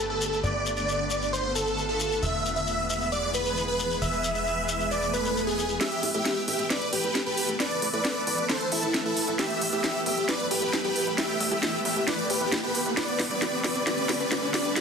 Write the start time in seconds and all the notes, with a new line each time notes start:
Already playing: G1 D3 A3 B3 G4 B4
0.10 A4
0.21 shekere
0.33 shekere
0.43 G1 F4 D5, shekere
0.66 shekere
0.77 D5, shekere
0.89 shekere
1.10 D5, shekere
1.22 shekere
1.33 C5, shekere
1.55 A4, shekere
1.67 shekere
1.78 shekere
1.89 A4
2.00 shekere
2.11 shekere
2.22 E1 E3 G#3 G#4 B4 E5, shekere
2.45 shekere
2.56 E5, shekere
2.67 shekere
2.90 E5, shekere
3.01 shekere
3.12 D5, shekere
3.34 B4, shekere
3.46 shekere
3.57 shekere
3.68 B4
3.79 shekere
3.90 shekere
4.02 E1 E5, shekere
4.12 shekere
4.24 shekere
4.35 E5, shekere
4.47 shekere
4.69 E5, shekere
4.80 shekere
4.91 D5, swell, shekere
5.02 shekere
5.13 B4, shekere
5.25 shekere
5.37 shekere
5.47 G#4, shekere
5.59 shekere
5.69 shekere
5.81 E3 A3 B3 G4 A4 B4 E5, snare, closed hi-hat, riser
5.92 closed hi-hat
6.03 A1, open hi-hat
6.14 A2 G4 E5, closed hi-hat
6.25 snare, closed hi-hat
6.48 A1 G4 E5, open hi-hat
6.59 A1, closed hi-hat
6.70 B4 D5, snare, closed hi-hat
6.82 closed hi-hat
6.93 A1 G4 B4, open hi-hat
7.04 A1, closed hi-hat
7.15 snare, closed hi-hat
7.26 A1 G4 B4
7.37 open hi-hat
7.49 A1, closed hi-hat
7.60 B4 D5, snare, closed hi-hat
7.71 closed hi-hat
7.82 A1, open hi-hat
7.93 A2 B4 D5, closed hi-hat
8.05 snare, closed hi-hat
8.27 A1 B4 D5, open hi-hat
8.38 A1, closed hi-hat
8.49 A4 C5, snare, closed hi-hat
8.61 closed hi-hat
8.72 A1 E4 A4, open hi-hat
8.83 A1, closed hi-hat
8.94 snare, closed hi-hat
9.05 A1 E4 A4
9.17 open hi-hat
9.28 A1, closed hi-hat
9.39 G4 E5, snare, closed hi-hat
9.50 closed hi-hat
9.61 A1, open hi-hat
9.73 A2 G4 E5, closed hi-hat
9.84 snare, closed hi-hat
10.06 A1 G4 E5, open hi-hat
10.17 A1, closed hi-hat
10.29 B4 D5, snare, closed hi-hat
10.40 closed hi-hat
10.51 A1 G4 B4, open hi-hat
10.62 A1, closed hi-hat
10.73 snare, closed hi-hat
10.84 A1 G4 B4
10.96 open hi-hat
11.07 A1, closed hi-hat
11.18 G4 E5, snare, closed hi-hat
11.29 closed hi-hat
11.40 A1, open hi-hat
11.51 A2 G4 E5, closed hi-hat
11.63 snare, closed hi-hat
11.85 A1 G4 E5, open hi-hat
11.96 A1, closed hi-hat
12.08 B4 D5, snare, closed hi-hat
12.19 closed hi-hat
12.30 A1 G4 B4, open hi-hat
12.41 A1, closed hi-hat
12.52 snare, closed hi-hat
12.63 A1 G4 B4
12.75 open hi-hat
12.86 A1, closed hi-hat
12.97 D3 G3 G4 B4 D5, snare, closed hi-hat
13.08 closed hi-hat
13.19 G1, snare, open hi-hat
13.31 G2 B4 D5, closed hi-hat
13.42 snare, closed hi-hat
13.64 G1 B4 D5, snare, open hi-hat
13.76 G1, closed hi-hat
13.87 B4 D5, snare, closed hi-hat
13.98 closed hi-hat
14.09 G1, snare, open hi-hat
14.20 G1 B4 D5, closed hi-hat
14.32 snare, closed hi-hat
14.43 G1
14.54 B4 D5, snare, open hi-hat
14.65 G1, closed hi-hat
14.76 B4 D5, snare, closed hi-hat